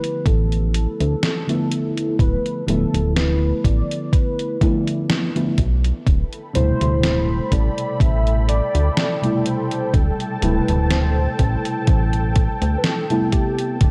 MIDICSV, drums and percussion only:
0, 0, Header, 1, 2, 480
1, 0, Start_track
1, 0, Tempo, 967742
1, 1090, Time_signature, 4, 2, 24, 8
1, 6899, End_track
2, 0, Start_track
2, 0, Title_t, "Drums"
2, 19, Note_on_c, 9, 42, 46
2, 69, Note_off_c, 9, 42, 0
2, 128, Note_on_c, 9, 36, 115
2, 129, Note_on_c, 9, 42, 70
2, 177, Note_off_c, 9, 36, 0
2, 179, Note_off_c, 9, 42, 0
2, 259, Note_on_c, 9, 42, 36
2, 309, Note_off_c, 9, 42, 0
2, 369, Note_on_c, 9, 42, 74
2, 419, Note_off_c, 9, 42, 0
2, 499, Note_on_c, 9, 42, 50
2, 548, Note_off_c, 9, 42, 0
2, 610, Note_on_c, 9, 38, 114
2, 610, Note_on_c, 9, 42, 76
2, 659, Note_off_c, 9, 38, 0
2, 659, Note_off_c, 9, 42, 0
2, 740, Note_on_c, 9, 42, 34
2, 790, Note_off_c, 9, 42, 0
2, 851, Note_on_c, 9, 42, 74
2, 900, Note_off_c, 9, 42, 0
2, 980, Note_on_c, 9, 42, 47
2, 1029, Note_off_c, 9, 42, 0
2, 1087, Note_on_c, 9, 36, 115
2, 1091, Note_on_c, 9, 42, 69
2, 1137, Note_off_c, 9, 36, 0
2, 1141, Note_off_c, 9, 42, 0
2, 1219, Note_on_c, 9, 42, 35
2, 1268, Note_off_c, 9, 42, 0
2, 1331, Note_on_c, 9, 42, 69
2, 1380, Note_off_c, 9, 42, 0
2, 1461, Note_on_c, 9, 42, 48
2, 1510, Note_off_c, 9, 42, 0
2, 1570, Note_on_c, 9, 38, 117
2, 1570, Note_on_c, 9, 42, 73
2, 1619, Note_off_c, 9, 38, 0
2, 1619, Note_off_c, 9, 42, 0
2, 1808, Note_on_c, 9, 36, 58
2, 1809, Note_on_c, 9, 42, 72
2, 1857, Note_off_c, 9, 36, 0
2, 1859, Note_off_c, 9, 42, 0
2, 1941, Note_on_c, 9, 42, 47
2, 1990, Note_off_c, 9, 42, 0
2, 2047, Note_on_c, 9, 36, 112
2, 2049, Note_on_c, 9, 42, 69
2, 2097, Note_off_c, 9, 36, 0
2, 2099, Note_off_c, 9, 42, 0
2, 2178, Note_on_c, 9, 42, 35
2, 2228, Note_off_c, 9, 42, 0
2, 2288, Note_on_c, 9, 36, 103
2, 2289, Note_on_c, 9, 42, 75
2, 2337, Note_off_c, 9, 36, 0
2, 2338, Note_off_c, 9, 42, 0
2, 2418, Note_on_c, 9, 42, 46
2, 2467, Note_off_c, 9, 42, 0
2, 2528, Note_on_c, 9, 38, 120
2, 2528, Note_on_c, 9, 42, 72
2, 2577, Note_off_c, 9, 38, 0
2, 2577, Note_off_c, 9, 42, 0
2, 2659, Note_on_c, 9, 42, 33
2, 2708, Note_off_c, 9, 42, 0
2, 2767, Note_on_c, 9, 42, 70
2, 2768, Note_on_c, 9, 36, 57
2, 2816, Note_off_c, 9, 42, 0
2, 2818, Note_off_c, 9, 36, 0
2, 2899, Note_on_c, 9, 42, 44
2, 2948, Note_off_c, 9, 42, 0
2, 3008, Note_on_c, 9, 36, 114
2, 3010, Note_on_c, 9, 42, 67
2, 3058, Note_off_c, 9, 36, 0
2, 3060, Note_off_c, 9, 42, 0
2, 3138, Note_on_c, 9, 42, 32
2, 3187, Note_off_c, 9, 42, 0
2, 3249, Note_on_c, 9, 42, 70
2, 3299, Note_off_c, 9, 42, 0
2, 3379, Note_on_c, 9, 42, 49
2, 3428, Note_off_c, 9, 42, 0
2, 3489, Note_on_c, 9, 38, 113
2, 3489, Note_on_c, 9, 42, 74
2, 3539, Note_off_c, 9, 38, 0
2, 3539, Note_off_c, 9, 42, 0
2, 3729, Note_on_c, 9, 36, 56
2, 3729, Note_on_c, 9, 42, 70
2, 3779, Note_off_c, 9, 36, 0
2, 3779, Note_off_c, 9, 42, 0
2, 3859, Note_on_c, 9, 42, 45
2, 3908, Note_off_c, 9, 42, 0
2, 3969, Note_on_c, 9, 36, 111
2, 3972, Note_on_c, 9, 42, 66
2, 4018, Note_off_c, 9, 36, 0
2, 4022, Note_off_c, 9, 42, 0
2, 4101, Note_on_c, 9, 42, 34
2, 4151, Note_off_c, 9, 42, 0
2, 4210, Note_on_c, 9, 42, 73
2, 4259, Note_off_c, 9, 42, 0
2, 4339, Note_on_c, 9, 42, 47
2, 4389, Note_off_c, 9, 42, 0
2, 4450, Note_on_c, 9, 38, 113
2, 4450, Note_on_c, 9, 42, 72
2, 4499, Note_off_c, 9, 38, 0
2, 4499, Note_off_c, 9, 42, 0
2, 4581, Note_on_c, 9, 42, 32
2, 4630, Note_off_c, 9, 42, 0
2, 4691, Note_on_c, 9, 42, 68
2, 4741, Note_off_c, 9, 42, 0
2, 4818, Note_on_c, 9, 42, 46
2, 4868, Note_off_c, 9, 42, 0
2, 4929, Note_on_c, 9, 36, 110
2, 4930, Note_on_c, 9, 42, 68
2, 4979, Note_off_c, 9, 36, 0
2, 4979, Note_off_c, 9, 42, 0
2, 5059, Note_on_c, 9, 42, 33
2, 5109, Note_off_c, 9, 42, 0
2, 5170, Note_on_c, 9, 42, 70
2, 5219, Note_off_c, 9, 42, 0
2, 5299, Note_on_c, 9, 42, 47
2, 5349, Note_off_c, 9, 42, 0
2, 5409, Note_on_c, 9, 38, 107
2, 5409, Note_on_c, 9, 42, 74
2, 5458, Note_off_c, 9, 38, 0
2, 5458, Note_off_c, 9, 42, 0
2, 5649, Note_on_c, 9, 42, 67
2, 5650, Note_on_c, 9, 36, 57
2, 5699, Note_off_c, 9, 36, 0
2, 5699, Note_off_c, 9, 42, 0
2, 5779, Note_on_c, 9, 42, 46
2, 5829, Note_off_c, 9, 42, 0
2, 5888, Note_on_c, 9, 42, 68
2, 5890, Note_on_c, 9, 36, 105
2, 5938, Note_off_c, 9, 42, 0
2, 5940, Note_off_c, 9, 36, 0
2, 6017, Note_on_c, 9, 42, 33
2, 6066, Note_off_c, 9, 42, 0
2, 6128, Note_on_c, 9, 42, 71
2, 6130, Note_on_c, 9, 36, 101
2, 6178, Note_off_c, 9, 42, 0
2, 6179, Note_off_c, 9, 36, 0
2, 6258, Note_on_c, 9, 42, 45
2, 6308, Note_off_c, 9, 42, 0
2, 6368, Note_on_c, 9, 38, 109
2, 6368, Note_on_c, 9, 42, 74
2, 6417, Note_off_c, 9, 38, 0
2, 6417, Note_off_c, 9, 42, 0
2, 6498, Note_on_c, 9, 42, 33
2, 6548, Note_off_c, 9, 42, 0
2, 6609, Note_on_c, 9, 42, 66
2, 6610, Note_on_c, 9, 36, 56
2, 6659, Note_off_c, 9, 42, 0
2, 6660, Note_off_c, 9, 36, 0
2, 6739, Note_on_c, 9, 42, 46
2, 6788, Note_off_c, 9, 42, 0
2, 6849, Note_on_c, 9, 42, 73
2, 6850, Note_on_c, 9, 36, 105
2, 6898, Note_off_c, 9, 42, 0
2, 6899, Note_off_c, 9, 36, 0
2, 6899, End_track
0, 0, End_of_file